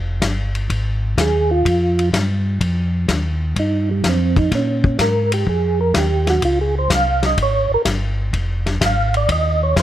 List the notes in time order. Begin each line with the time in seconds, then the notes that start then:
Already playing: F1
0.22 G1, kick, snare, hi-hat pedal, ride
0.55 ride
0.70 G#1, kick, ride
1.18 D#2 G#4, kick, snare, hi-hat pedal, ride
1.51 F4
1.65 F2, kick, ride
1.99 ride
2.13 G2, kick, snare, hi-hat pedal, ride
2.61 F2, kick, ride
3.08 D#2, kick, snare, hi-hat pedal, ride
3.56 G2 D#4, kick, ride
3.91 G3
4.04 F2, kick, snare, hi-hat pedal, ride
4.09 C4
4.36 D#4, kick, ride
4.51 A#2 C#4, kick, snare, ride
4.84 kick
4.99 G#2 A#4, kick, snare, hi-hat pedal, ride
5.32 G4, ride
5.47 F2 G#4, kick
5.81 A#4
5.94 D#2 G4, kick, snare, hi-hat pedal, ride
6.27 F#4, snare, ride
6.42 C#2 F4, kick, ride
6.61 G#4
6.79 C5
6.90 C2, kick, snare, hi-hat pedal, ride
6.95 F5
7.23 D#5, snare, ride
7.38 G#1, kick, ride
7.43 C#5
7.70 G#1
7.74 A#4
7.85 G1, kick, snare, hi-hat pedal, ride
8.33 F1, kick, ride
8.66 snare, ride
8.81 G#1, kick, snare, hi-hat pedal, ride
8.86 F5
9.14 D5, ride
9.29 D#2 D#5, kick, ride
9.63 C#5
9.76 F2, kick, snare, hi-hat pedal, ride